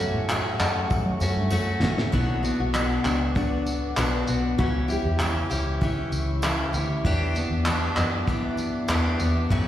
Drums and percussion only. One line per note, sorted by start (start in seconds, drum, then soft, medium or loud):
0.29 clap loud
0.29 tambourine medium
0.59 clap loud
0.59 tambourine medium
0.90 kick loud
0.90 tambourine soft
1.20 tambourine medium
1.50 tambourine medium
1.82 snare loud
1.82 tambourine soft
1.98 snare loud
2.13 kick loud
2.13 tambourine soft
2.44 tambourine soft
2.44 tambourine medium
2.74 clap loud
2.74 tambourine medium
3.05 clap loud
3.05 tambourine medium
3.36 kick loud
3.36 tambourine soft
3.66 tambourine medium
3.97 clap loud
3.97 tambourine medium
4.27 tambourine medium
4.27 tambourine soft
4.59 kick loud
4.90 tambourine medium
4.90 tambourine soft
5.19 clap loud
5.19 tambourine medium
5.51 tambourine soft
5.51 tambourine medium
5.81 kick loud
5.81 tambourine soft
6.12 tambourine soft
6.12 tambourine medium
6.42 clap loud
6.42 tambourine medium
6.73 tambourine soft
6.73 tambourine medium
7.05 kick loud
7.35 tambourine soft
7.35 tambourine medium
7.65 clap loud
7.65 tambourine medium
7.96 clap loud
7.96 tambourine medium
8.27 kick loud
8.27 tambourine soft
8.57 tambourine soft
8.57 tambourine medium
8.88 clap loud
8.88 tambourine medium
9.20 tambourine soft
9.20 tambourine medium
9.51 kick loud
9.51 tambourine soft